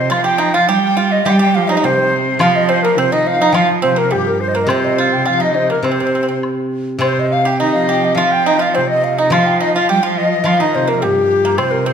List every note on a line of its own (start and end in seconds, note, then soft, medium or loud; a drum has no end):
0.00 0.11 C3 medium
0.00 0.68 F3 medium
0.00 0.13 C5 medium
0.00 0.12 D#5 medium
0.10 0.69 F3 medium
0.10 0.24 F4 medium
0.10 0.24 F5 medium
0.10 0.25 F5 medium
0.10 high woodblock medium
0.24 0.38 G4 medium
0.24 0.41 G5 medium
0.24 0.56 G5 medium
0.38 0.53 D#4 medium
0.38 0.55 D#5 medium
0.54 0.68 F4 medium
0.54 0.70 F5 medium
0.54 0.69 F5 medium
0.68 1.26 G3 medium
0.68 0.96 G4 medium
0.68 1.13 G5 medium
0.68 0.83 G5 medium
0.83 0.99 G5 medium
0.97 1.25 F4 medium
0.97 1.11 F5 medium
1.11 1.27 D#5 medium
1.11 1.28 D#5 medium
1.25 2.97 G3 medium
1.25 1.57 G3 medium
1.25 1.38 G4 medium
1.25 1.40 G5 medium
1.25 1.41 G5 medium
1.25 high woodblock soft
1.39 1.67 G4 medium
1.39 1.57 G5 medium
1.39 1.56 G5 medium
1.55 1.86 F3 medium
1.55 1.69 F5 medium
1.55 1.60 F5 medium
1.55 1.64 G5 medium
1.63 1.72 F5 medium
1.68 1.76 D#4 medium
1.68 1.74 D#5 medium
1.68 1.86 D#5 medium
1.72 1.77 C5 medium
1.72 1.83 D#5 medium
1.77 1.84 D#4 medium
1.84 2.42 C3 medium
1.84 2.37 C4 medium
1.84 2.15 C5 medium
1.84 2.42 C5 medium
1.84 low woodblock soft
2.39 3.51 F3 medium
2.39 3.00 F3 medium
2.39 2.67 F4 medium
2.39 2.58 F5 medium
2.39 2.57 F5 medium
2.39 high woodblock medium
2.55 2.70 D#5 medium
2.55 2.71 D#5 medium
2.69 2.82 C4 medium
2.69 2.84 C5 medium
2.69 2.83 C5 medium
2.83 2.97 A#3 medium
2.83 3.00 A#4 medium
2.83 3.01 A#4 medium
2.98 3.14 C3 medium
2.98 3.11 C4 medium
2.98 3.14 C5 medium
3.12 3.28 D#3 medium
3.12 3.38 D#4 medium
3.12 3.28 D#5 medium
3.12 3.29 D#5 medium
3.27 3.55 F3 medium
3.27 3.42 F5 medium
3.27 3.55 F5 medium
3.41 3.54 D#4 medium
3.41 3.51 D#5 medium
3.51 5.25 F3 medium
3.51 3.68 F4 medium
3.51 3.57 G5 medium
3.51 high woodblock medium
3.56 3.69 F3 medium
3.56 3.68 F5 medium
3.56 3.69 F5 medium
3.82 4.16 C3 medium
3.82 3.96 C4 medium
3.82 4.00 C5 medium
3.96 4.10 A#3 medium
3.96 4.14 A#4 medium
3.96 4.13 A#4 medium
4.11 4.71 G2 medium
4.11 4.51 G3 medium
4.11 4.28 G4 medium
4.11 4.42 G4 medium
4.11 low woodblock soft
4.27 4.41 A#4 medium
4.41 4.50 C5 medium
4.41 4.58 C5 medium
4.48 4.56 D#5 medium
4.54 4.68 A#3 medium
4.54 4.71 A#4 medium
4.54 4.62 C5 medium
4.62 4.70 D#5 medium
4.67 5.81 C3 medium
4.67 5.27 C3 medium
4.67 4.96 C4 medium
4.67 5.28 C5 medium
4.67 4.86 C5 medium
4.67 high woodblock medium
4.84 5.00 D#5 medium
4.98 5.24 F4 medium
4.98 5.14 F5 medium
5.12 5.28 G5 medium
5.25 5.58 F3 medium
5.25 5.39 F4 medium
5.25 5.43 F5 medium
5.25 5.44 F5 medium
5.25 low woodblock soft
5.40 5.67 D#4 medium
5.40 5.73 D#5 medium
5.40 5.57 D#5 medium
5.55 5.85 C3 medium
5.55 5.71 C5 medium
5.70 5.83 A#3 medium
5.70 5.84 A#4 medium
5.70 5.88 A#4 medium
5.83 6.97 C3 soft
5.83 6.39 C3 medium
5.83 5.90 C4 medium
5.83 6.38 C5 medium
5.83 6.43 C5 medium
5.83 high woodblock soft
5.91 5.98 C4 soft
6.00 6.05 C4 soft
6.07 6.14 C4 soft
6.15 6.21 C4 soft
6.23 6.27 C4 soft
6.28 6.36 C4 soft
6.43 high woodblock soft
6.99 8.16 C3 medium
6.99 7.42 C4 medium
6.99 7.29 C5 medium
6.99 high woodblock medium
7.03 7.63 C3 medium
7.03 7.21 C5 medium
7.19 7.35 D#5 medium
7.30 7.58 F5 medium
7.30 7.49 F5 medium
7.45 7.59 G4 medium
7.45 7.61 G5 medium
7.58 7.76 D#3 medium
7.58 7.87 D#4 medium
7.58 8.17 D#5 medium
7.58 7.74 D#5 medium
7.74 8.18 F3 medium
7.74 7.92 F5 medium
7.89 8.16 G4 medium
7.89 8.06 G5 medium
8.04 8.21 D#5 medium
8.15 9.29 F3 medium
8.15 8.44 F4 medium
8.15 8.33 F5 medium
8.15 high woodblock soft
8.19 8.79 F3 medium
8.19 8.35 F5 medium
8.31 8.61 G5 medium
8.31 8.50 G5 medium
8.46 8.59 D#4 medium
8.46 8.64 D#5 medium
8.59 8.73 F4 medium
8.59 8.75 F5 medium
8.59 8.76 F5 medium
8.73 9.01 C4 medium
8.73 8.89 C5 medium
8.73 8.90 C5 medium
8.73 low woodblock soft
8.78 9.36 C3 medium
8.87 9.16 D#5 medium
8.87 9.05 D#5 medium
9.01 9.15 A#3 medium
9.01 9.20 F5 medium
9.16 9.31 D#4 medium
9.16 9.33 D#5 medium
9.16 9.35 D#5 medium
9.30 10.42 F3 medium
9.30 9.59 F4 medium
9.30 9.60 F5 medium
9.30 9.48 F5 medium
9.30 high woodblock medium
9.34 9.91 F3 medium
9.46 9.62 G5 medium
9.60 9.74 D#4 medium
9.60 9.74 D#5 medium
9.60 9.77 D#5 medium
9.75 9.89 F4 medium
9.75 9.92 F5 medium
9.75 9.89 F5 medium
9.89 10.03 G3 medium
9.89 10.02 G4 medium
9.89 10.05 G5 medium
10.03 10.43 F3 medium
10.03 10.43 F4 medium
10.03 10.19 F5 medium
10.03 10.18 F5 medium
10.18 10.47 D#5 medium
10.18 10.31 D#5 medium
10.33 10.45 D#5 medium
10.44 11.93 F3 medium
10.44 10.63 F3 medium
10.44 10.59 F4 medium
10.44 10.63 F5 medium
10.44 10.62 F5 medium
10.44 high woodblock soft
10.60 10.77 D#3 medium
10.60 10.86 D#4 medium
10.60 10.77 D#5 medium
10.60 10.92 D#5 medium
10.75 11.05 C3 medium
10.75 10.90 C5 medium
10.87 11.01 A#3 medium
10.87 11.05 A#4 medium
10.87 11.06 A#4 medium
11.02 11.60 G2 medium
11.02 11.41 G3 medium
11.02 11.58 G4 medium
11.02 11.60 G4 medium
11.02 low woodblock soft
11.45 11.58 A#3 medium
11.58 11.93 C3 medium
11.58 11.84 C4 medium
11.58 11.86 C5 medium
11.58 11.73 C5 medium
11.58 high woodblock medium
11.71 11.88 A#4 medium
11.86 11.93 C4 medium
11.86 11.93 C5 medium